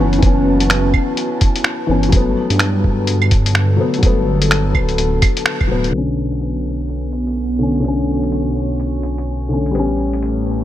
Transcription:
0.00 0.21 F#1 medium
0.00 0.19 E3 loud
0.00 2.13 F#3 medium
0.00 0.23 B3 medium
0.00 0.27 C#4 loud
0.00 2.13 C#4 medium
0.00 3.41 F#4 medium
0.00 6.55 B4 medium
0.00 5.95 A5 medium
0.13 closed hi-hat soft
0.19 1.85 E3 medium
0.19 closed hi-hat soft
0.23 0.93 F#1 medium
0.23 1.87 B3 medium
0.23 1.89 C#4 loud
0.23 kick loud
0.60 closed hi-hat medium
0.70 finger snap loud
0.70 closed hi-hat soft
0.94 kick medium
0.94 claves soft
1.17 closed hi-hat medium
1.41 kick loud
1.41 closed hi-hat medium
1.56 closed hi-hat soft
1.64 finger snap medium
1.87 2.36 G1 medium
1.87 2.10 E3 medium
1.87 2.11 B3 medium
1.87 2.12 C#4 medium
2.03 closed hi-hat soft
2.09 3.75 F#3 loud
2.09 3.77 A3 medium
2.09 closed hi-hat medium
2.13 3.79 B3 loud
2.13 kick loud
2.46 6.54 D3 medium
2.50 3.78 G2 medium
2.50 closed hi-hat medium
2.59 finger snap medium
2.59 closed hi-hat medium
2.84 kick medium
3.00 7.48 A4 medium
3.07 closed hi-hat medium
3.22 claves medium
3.31 kick loud
3.31 closed hi-hat medium
3.46 closed hi-hat medium
3.55 finger snap medium
3.77 3.97 F#3 medium
3.77 4.01 A3 medium
3.77 4.02 B3 loud
3.94 closed hi-hat soft
3.98 5.65 F#3 medium
4.02 4.76 G1 loud
4.02 5.67 A3 medium
4.02 5.69 B3 loud
4.02 kick loud
4.02 closed hi-hat medium
4.42 closed hi-hat medium
4.51 finger snap medium
4.51 closed hi-hat medium
4.74 5.21 D1 loud
4.74 kick medium
4.74 claves medium
4.89 closed hi-hat soft
4.98 closed hi-hat medium
5.22 kick medium
5.22 closed hi-hat medium
5.22 claves medium
5.37 closed hi-hat medium
5.46 finger snap loud
5.61 kick medium
5.61 claves soft
5.68 5.93 D1 medium
5.68 5.90 F#3 medium
5.68 5.91 A3 medium
5.68 5.92 B3 loud
5.84 closed hi-hat soft
5.90 9.73 B1 medium
5.90 7.56 D3 medium
5.90 10.64 B3 medium
5.90 closed hi-hat soft
5.94 7.58 A3 medium
5.94 7.60 C#4 loud
6.20 10.64 F#4 medium
6.32 10.64 C#5 medium
6.32 closed hi-hat soft
6.41 closed hi-hat soft
6.89 closed hi-hat medium
7.13 closed hi-hat medium
7.27 closed hi-hat soft
7.59 7.79 D3 medium
7.59 7.82 A3 medium
7.63 7.83 C#4 medium
7.75 closed hi-hat soft
7.80 9.47 D3 medium
7.80 9.49 A3 medium
7.85 9.51 C#4 loud
7.85 closed hi-hat soft
8.23 closed hi-hat medium
8.32 closed hi-hat soft
8.80 closed hi-hat medium
9.03 closed hi-hat medium
9.18 closed hi-hat soft
9.49 9.72 D3 medium
9.49 9.73 A3 medium
9.53 9.74 C#4 medium
9.66 closed hi-hat soft
9.71 10.64 A1 medium
9.71 10.64 G3 medium
9.71 10.64 A3 medium
9.71 10.64 B3 medium
9.71 closed hi-hat soft
9.79 10.64 C#4 loud
10.09 10.64 E4 medium
10.09 closed hi-hat soft
10.23 closed hi-hat soft
10.29 10.64 B4 medium

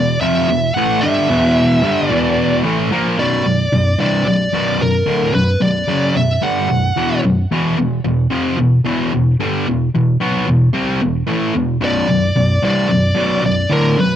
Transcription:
0.00 0.17 E2 medium
0.00 0.17 B2 medium
0.00 0.19 D5 medium
0.21 0.49 F2 medium
0.21 0.49 C3 medium
0.21 0.49 F3 loud
0.21 0.72 E5 loud
0.49 0.71 E2 medium
0.49 0.71 B2 medium
0.74 1.03 A2 medium
0.74 1.03 E3 medium
0.74 1.03 A3 loud
0.74 1.03 F#5 loud
1.01 1.29 G2 loud
1.01 1.30 D3 loud
1.01 1.30 G3 loud
1.01 2.06 E5 loud
1.30 1.83 E2 medium
1.30 1.84 B2 loud
1.30 1.84 E3 medium
1.83 2.10 G2 medium
1.83 2.10 D3 loud
1.83 2.11 G3 medium
2.06 2.60 D5 loud
2.10 2.64 E2 medium
2.10 2.64 B2 loud
2.10 2.64 E3 loud
2.64 2.91 A2 medium
2.64 2.91 E3 medium
2.64 2.91 A3 loud
2.91 3.18 A#2 medium
2.91 3.18 F3 medium
2.91 3.18 A#3 loud
3.18 3.44 B1 medium
3.18 3.44 F#2 medium
3.18 3.45 B2 medium
3.18 3.99 D5 medium
3.45 3.67 B1 medium
3.45 3.67 F#2 medium
3.72 3.94 B1 medium
3.72 3.94 F#2 medium
3.98 4.25 C2 medium
3.98 4.25 G2 medium
3.98 4.26 C3 medium
3.98 4.26 D5 medium
4.25 4.48 B1 medium
4.25 4.48 F#2 medium
4.25 4.83 D5 medium
4.53 4.78 B1 medium
4.53 4.79 F#2 medium
4.53 4.80 B2 medium
4.80 5.02 B1 medium
4.80 5.02 F#2 medium
4.80 5.34 A#4 medium
5.06 5.33 D2 medium
5.06 5.33 A2 medium
5.06 5.34 D3 medium
5.33 5.55 B1 medium
5.33 5.56 F#2 medium
5.33 5.59 B4 medium
5.60 5.83 B1 medium
5.60 5.83 F#2 medium
5.60 6.16 D5 medium
5.88 6.14 F#2 medium
5.88 6.14 C#3 medium
5.88 6.15 F#3 medium
6.14 6.37 B1 medium
6.14 6.37 F#2 medium
6.14 6.44 E5 loud
6.42 6.68 G2 medium
6.42 6.69 D3 medium
6.42 6.69 G3 medium
6.42 7.20 F#5 medium
6.70 6.91 B1 medium
6.70 6.91 F#2 medium
6.96 7.23 E2 medium
6.96 7.23 B2 medium
6.96 7.23 E3 medium
7.24 7.45 B1 medium
7.24 7.46 F#2 medium
7.51 7.76 E2 medium
7.51 7.77 B2 loud
7.51 7.78 E3 loud
7.78 7.99 E2 medium
7.78 7.99 B2 medium
8.04 8.26 E2 medium
8.04 8.26 B2 medium
8.30 8.57 F2 medium
8.30 8.58 C3 medium
8.30 8.58 F3 loud
8.57 8.80 E2 medium
8.57 8.80 B2 medium
8.85 9.11 E2 medium
8.85 9.12 B2 medium
8.85 9.12 E3 medium
9.13 9.35 E2 medium
9.13 9.35 B2 medium
9.40 9.66 G2 medium
9.40 9.66 D3 medium
9.40 9.67 G3 loud
9.67 9.89 E2 medium
9.67 9.89 B2 medium
9.95 10.16 E2 medium
9.95 10.16 B2 medium
10.20 10.45 B2 medium
10.20 10.47 F#3 medium
10.20 10.47 B3 medium
10.46 10.68 E2 medium
10.46 10.69 B2 medium
10.74 11.00 C3 medium
10.74 11.01 G3 loud
10.74 11.01 C4 medium
11.02 11.23 E2 medium
11.02 11.23 B2 medium
11.27 11.54 A2 medium
11.27 11.54 E3 medium
11.27 11.55 A3 loud
11.54 11.76 E2 medium
11.54 11.77 B2 medium
11.81 12.08 B1 medium
11.81 12.08 F#2 loud
11.81 12.08 B2 medium
11.81 12.63 D5 medium
12.09 12.31 B1 medium
12.09 12.31 F#2 medium
12.36 12.58 B1 medium
12.36 12.58 F#2 medium
12.62 12.89 C2 medium
12.62 12.89 G2 medium
12.62 12.90 C3 medium
12.62 13.45 D5 medium
12.89 13.11 B1 medium
12.89 13.12 F#2 medium
13.15 13.41 B1 medium
13.15 13.42 F#2 medium
13.15 13.43 B2 medium
13.43 13.65 B1 medium
13.43 13.66 F#2 medium
13.43 13.70 D5 medium
13.70 13.97 D2 medium
13.70 13.97 A2 medium
13.70 13.98 D3 medium
13.70 14.00 A#4 medium
13.98 14.16 B1 medium
13.98 14.16 F#2 medium
13.98 14.16 B4 medium

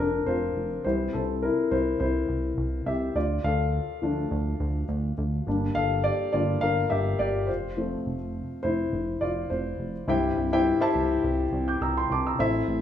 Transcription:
0.00 0.22 F1 loud
0.00 0.86 F3 soft
0.00 0.86 A3 soft
0.00 0.86 C4 medium
0.00 0.26 D4 medium
0.00 0.28 F4 medium
0.00 0.86 A4 medium
0.00 0.87 A#4 medium
0.00 0.26 C5 medium
0.26 0.50 F1 loud
0.26 0.68 F4 medium
0.26 0.67 C5 medium
0.56 0.79 F1 medium
0.84 1.09 C2 loud
0.84 3.12 E3 soft
0.84 3.12 G3 soft
0.84 1.14 C4 soft
0.84 1.12 E4 medium
0.84 1.14 C5 medium
1.13 1.49 C2 medium
1.13 1.21 C4 medium
1.13 1.20 A4 medium
1.42 1.70 E4 medium
1.42 1.72 A#4 medium
1.71 1.95 C2 medium
1.71 1.99 E4 medium
1.71 1.98 C5 medium
2.00 2.24 C2 loud
2.00 2.83 E4 medium
2.00 2.89 C5 medium
2.29 2.52 C2 loud
2.58 2.81 C2 loud
2.86 3.10 C2 loud
2.86 3.14 G4 medium
2.86 3.16 E5 medium
3.15 3.39 D2 medium
3.15 3.43 F4 medium
3.15 3.45 D5 medium
3.44 3.80 D2 loud
3.44 5.15 A4 medium
3.44 5.14 F5 medium
4.02 4.26 D2 medium
4.02 4.85 F3 medium
4.02 4.85 A3 soft
4.02 4.85 D4 medium
4.31 4.55 D2 loud
4.60 4.84 D2 loud
4.89 5.12 D2 loud
5.18 5.41 D2 medium
5.47 5.71 G1 loud
5.47 6.29 G3 medium
5.47 6.30 A#3 soft
5.47 6.30 D4 medium
5.75 6.11 G1 loud
5.75 6.03 A4 medium
5.75 6.02 F5 loud
6.04 6.32 G4 medium
6.04 6.31 D5 medium
6.33 6.57 G1 loud
6.33 6.59 G3 soft
6.33 6.59 A#3 soft
6.33 6.60 D4 medium
6.33 6.61 F4 medium
6.33 6.63 D5 medium
6.61 6.86 G1 loud
6.61 6.89 A#4 medium
6.61 6.91 F5 loud
6.90 7.15 G1 loud
6.90 7.18 G4 medium
6.90 7.17 E5 medium
7.19 7.50 G1 loud
7.19 7.47 G4 medium
7.19 7.49 D5 medium
7.47 7.96 F1 loud
7.47 8.60 F4 medium
7.47 8.59 C5 medium
7.77 8.16 F3 medium
7.77 8.16 A3 soft
7.77 8.16 C4 medium
8.06 8.42 F1 medium
8.63 8.88 F1 medium
8.63 9.18 E4 medium
8.63 9.23 C5 medium
8.93 9.17 F1 loud
9.21 9.46 F1 medium
9.21 9.49 F4 medium
9.21 9.48 D5 medium
9.50 9.74 F1 medium
9.50 9.92 F4 soft
9.50 9.91 C5 medium
9.79 10.03 F1 loud
10.08 10.32 C2 loud
10.08 10.91 G2 medium
10.08 10.46 E4 medium
10.08 10.47 G4 medium
10.08 10.47 C5 medium
10.08 10.47 E5 medium
10.08 10.47 G5 loud
10.37 10.72 C2 loud
10.52 10.78 E4 medium
10.52 10.78 G4 medium
10.52 10.78 C5 medium
10.52 10.78 E5 medium
10.52 10.78 G5 loud
10.81 11.44 E4 medium
10.81 11.45 G4 medium
10.81 11.45 C5 medium
10.81 11.45 E5 medium
10.81 11.45 A5 loud
10.95 11.18 C2 medium
11.24 11.47 C2 loud
11.53 11.76 C2 loud
11.68 11.82 D6 soft
11.68 11.81 G6 medium
11.81 12.05 C2 loud
11.81 11.96 A#5 medium
11.81 11.95 E6 medium
11.97 12.11 G5 medium
11.97 12.10 C6 medium
12.10 12.34 C2 medium
12.10 12.25 A5 medium
12.10 12.25 D6 medium
12.27 12.54 A#5 soft
12.27 12.53 E6 medium
12.39 12.63 A1 loud
12.39 12.77 C4 medium
12.39 12.77 E4 medium
12.39 12.78 A4 medium
12.39 12.78 C5 medium
12.39 12.78 E5 loud
12.68 12.81 A1 loud

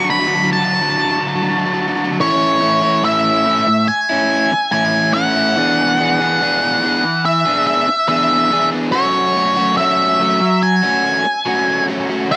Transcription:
0.04 0.11 D3 medium
0.04 0.12 F#3 medium
0.10 0.19 D3 medium
0.10 0.20 F#3 medium
0.10 0.49 B5 medium
0.20 0.27 D3 medium
0.20 0.27 F#3 medium
0.27 0.34 D3 medium
0.27 0.35 F#3 medium
0.35 0.42 D3 medium
0.35 0.43 F#3 medium
0.43 0.51 D3 medium
0.43 0.51 F#3 medium
0.51 0.57 D3 medium
0.51 0.59 F#3 medium
0.51 2.17 A5 medium
0.57 0.65 D3 medium
0.57 0.66 F#3 medium
0.65 0.73 D3 medium
0.65 0.73 F#3 medium
0.73 0.81 D3 medium
0.73 0.81 F#3 medium
0.81 0.87 D3 medium
0.81 0.89 F#3 medium
0.88 0.95 D3 medium
0.88 0.97 F#3 medium
0.97 1.04 D3 medium
0.97 1.04 F#3 medium
1.04 1.11 D3 medium
1.04 1.11 F#3 medium
1.12 1.19 D3 medium
1.12 1.19 F#3 medium
1.20 1.26 D3 medium
1.20 1.27 F#3 medium
1.27 1.35 D3 medium
1.27 1.35 F#3 medium
1.35 1.42 D3 medium
1.35 1.42 F#3 medium
1.43 1.50 D3 medium
1.43 1.50 F#3 medium
1.50 1.57 D3 medium
1.50 1.58 F#3 medium
1.58 1.66 D3 medium
1.58 1.65 F#3 medium
1.65 1.73 D3 medium
1.65 1.73 F#3 medium
1.74 1.80 D3 medium
1.74 1.81 F#3 medium
1.80 1.88 D3 medium
1.80 1.87 F#3 medium
1.88 1.95 D3 medium
1.88 1.96 F#3 medium
1.96 2.03 D3 medium
1.96 2.04 F#3 medium
2.04 2.11 D3 medium
2.04 2.12 F#3 medium
2.11 2.19 D3 medium
2.11 2.20 F#3 medium
2.20 3.02 A2 medium
2.20 2.61 E3 loud
2.20 2.61 A3 loud
2.20 2.62 C#4 loud
2.20 2.63 E4 loud
2.20 3.04 C#5 loud
2.62 3.03 E3 medium
2.62 2.83 A3 medium
2.62 2.82 C#4 medium
2.62 2.82 E4 medium
2.82 3.03 A3 medium
2.82 3.03 C#4 medium
2.82 3.05 E4 medium
3.03 3.88 A2 loud
3.03 3.45 E3 loud
3.03 3.45 A3 loud
3.03 3.46 C#4 loud
3.03 3.47 E4 loud
3.03 3.91 E5 loud
3.45 3.68 E3 medium
3.45 3.67 A3 medium
3.45 3.66 C#4 medium
3.45 3.67 E4 medium
3.67 muted overdriven electric guitar stroke medium
3.88 4.70 G#5 loud
4.09 4.52 A3 medium
4.09 4.51 C#4 medium
4.09 4.52 E4 medium
4.52 muted overdriven electric guitar stroke medium
4.72 5.54 A2 loud
4.72 5.14 E3 loud
4.72 5.14 A3 loud
4.72 5.15 C#4 loud
4.72 5.17 E4 loud
4.72 5.11 G#5 loud
5.14 5.56 E3 medium
5.14 5.37 A3 medium
5.14 5.36 C#4 medium
5.14 5.36 E4 medium
5.14 7.31 F#5 loud
5.36 5.56 A3 medium
5.36 5.55 C#4 medium
5.36 5.58 E4 medium
5.56 5.98 E3 loud
5.56 5.98 B3 loud
5.56 5.99 D4 loud
5.56 6.00 G#4 loud
5.98 6.41 E3 medium
5.98 6.21 B3 medium
5.98 6.20 D4 medium
5.98 6.18 G#4 medium
6.20 6.41 B3 medium
6.20 6.41 D4 medium
6.20 6.42 G#4 medium
6.41 6.82 E3 medium
6.41 6.82 B3 medium
6.41 6.83 D4 loud
6.41 6.84 G#4 loud
6.82 7.46 E3 medium
6.82 7.04 B3 medium
6.82 7.04 D4 loud
6.82 7.03 G#4 loud
7.04 muted overdriven electric guitar stroke medium
7.25 7.66 E5 loud
7.45 7.88 B3 medium
7.45 7.87 D4 medium
7.45 7.87 G#4 medium
7.67 8.07 E5 loud
7.88 muted overdriven electric guitar stroke medium
8.08 8.50 E3 loud
8.08 8.51 B3 loud
8.08 8.52 D4 loud
8.08 8.52 G#4 loud
8.08 8.69 E5 medium
8.51 8.91 E3 medium
8.51 8.73 B3 medium
8.51 8.72 D4 medium
8.51 8.71 G#4 medium
8.72 8.92 B3 medium
8.72 8.92 D4 medium
8.72 8.91 G#4 medium
8.92 9.35 F#3 loud
8.92 9.36 A3 loud
8.92 9.36 C#4 loud
8.92 9.37 F#4 loud
8.92 9.77 C#5 loud
9.35 9.78 F#3 medium
9.35 9.58 A3 medium
9.35 9.57 C#4 medium
9.35 9.56 F#4 loud
9.56 9.79 A3 medium
9.56 9.79 C#4 medium
9.56 9.80 F#4 medium
9.77 10.19 F#3 medium
9.77 10.20 A3 loud
9.77 10.20 C#4 loud
9.77 10.22 F#4 loud
9.77 10.65 E5 loud
10.20 10.84 F#3 medium
10.20 10.42 A3 medium
10.20 10.40 C#4 medium
10.20 10.40 F#4 medium
10.41 muted overdriven electric guitar stroke medium
10.63 11.86 G#5 loud
10.83 11.26 A3 medium
10.83 11.25 C#4 medium
10.83 11.24 F#4 medium
11.26 muted overdriven electric guitar stroke medium
11.46 11.87 F#3 loud
11.46 11.89 A3 loud
11.46 11.89 C#4 loud
11.46 11.90 F#4 loud
11.88 12.29 F#3 medium
11.88 12.12 A3 medium
11.88 12.10 C#4 medium
11.88 12.09 F#4 medium
12.10 12.31 A3 medium
12.10 12.29 C#4 medium
12.10 12.29 F#4 medium
12.30 12.37 D3 loud
12.30 12.37 A3 loud
12.30 12.37 D4 loud
12.30 12.37 F#4 loud
12.30 12.37 F#5 loud

